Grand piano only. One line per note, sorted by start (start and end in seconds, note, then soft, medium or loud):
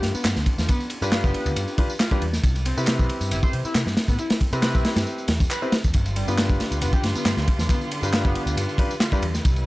0.00 1.00 D4 medium
0.00 1.00 F4 medium
0.00 1.00 G4 medium
0.00 1.00 B4 medium
1.02 1.76 D4 medium
1.02 1.76 F4 medium
1.02 1.76 G4 medium
1.02 1.76 B4 medium
1.78 1.90 D4 medium
1.78 1.90 F4 medium
1.78 1.90 G4 medium
1.78 1.90 B4 medium
2.11 2.22 D4 medium
2.11 2.22 F4 medium
2.11 2.22 G4 medium
2.11 2.22 B4 medium
2.77 4.50 C4 medium
2.77 4.50 E4 medium
2.77 4.50 G4 medium
2.77 4.50 B4 medium
4.53 5.26 C4 medium
4.53 5.26 E4 medium
4.53 5.26 G4 medium
4.53 5.26 B4 medium
5.62 5.73 C4 medium
5.62 5.73 E4 medium
5.62 5.73 G4 medium
5.62 5.73 B4 medium
6.28 8.00 D4 medium
6.28 8.00 F4 medium
6.28 8.00 G4 medium
6.28 8.00 B4 medium
8.03 8.77 D4 medium
8.03 8.77 F4 medium
8.03 8.77 G4 medium
8.03 8.77 B4 medium
8.79 8.91 D4 medium
8.79 8.91 F4 medium
8.79 8.91 G4 medium
8.79 8.91 B4 loud
9.13 9.23 D4 medium
9.13 9.23 F4 medium
9.13 9.23 G4 medium
9.13 9.23 B4 medium